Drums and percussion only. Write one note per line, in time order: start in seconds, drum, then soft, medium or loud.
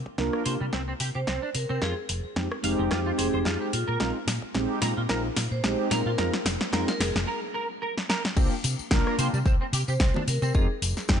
0.06 kick medium
0.18 kick loud
0.18 snare soft
0.33 cross-stick medium
0.46 open hi-hat loud
0.73 kick loud
0.73 snare soft
1.00 open hi-hat medium
1.27 kick loud
1.27 snare medium
1.55 open hi-hat loud
1.82 kick loud
1.82 snare medium
2.09 open hi-hat loud
2.36 kick loud
2.36 snare medium
2.52 cross-stick medium
2.64 open hi-hat loud
2.91 kick loud
2.91 cross-stick medium
2.91 snare medium
3.19 open hi-hat loud
3.45 kick loud
3.45 snare medium
3.73 open hi-hat loud
4.00 kick loud
4.00 snare medium
4.28 snare medium
4.28 open hi-hat loud
4.42 kick medium
4.55 kick loud
4.55 snare medium
4.82 snare medium
4.82 open hi-hat loud
5.09 kick loud
5.09 snare medium
5.37 snare medium
5.37 open hi-hat loud
5.64 kick loud
5.64 snare medium
5.91 snare medium
5.91 open hi-hat loud
6.18 kick loud
6.18 snare medium
6.33 snare medium
6.46 snare medium
6.46 open hi-hat loud
6.61 snare medium
6.73 kick loud
6.73 snare medium
6.88 snare medium
7.01 snare loud
7.01 open hi-hat loud
7.16 snare medium
7.98 snare medium
8.10 snare medium
8.25 snare medium
8.37 kick loud
8.37 crash loud
8.37 tambourine soft
8.64 open hi-hat loud
8.64 tambourine medium
8.79 tambourine medium
8.91 kick loud
8.91 snare loud
8.91 tambourine soft
9.07 cross-stick medium
9.19 open hi-hat loud
9.19 tambourine medium
9.34 tambourine soft
9.46 kick loud
9.46 tambourine soft
9.73 open hi-hat loud
9.73 tambourine medium
9.88 tambourine soft
10.00 kick loud
10.00 snare loud
10.00 tambourine soft
10.14 high conga medium
10.14 low conga medium
10.27 open hi-hat loud
10.27 tambourine loud
10.42 tambourine medium
10.54 kick loud
10.54 tambourine soft
10.82 open hi-hat loud
10.82 tambourine medium
10.97 snare soft
10.97 tambourine medium
11.08 kick loud
11.08 snare loud
11.08 tambourine soft